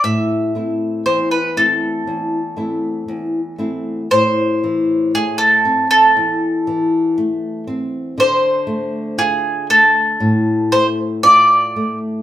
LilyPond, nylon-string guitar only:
\new Staff \with { instrumentName = "Nylon-string guitar" } { \time 2/4 \key a \minor \tempo 4 = 59 a,8 <a c' e'>8 e,8 <a c' e'>8 | e,8 <a c' e'>8 e,8 <a c' e'>8 | a,8 e8 a8 c'8 | e,8 e8 a8 c'8 |
d8 a8 f'8 a8 | a,8 a8 f'8 a8 | }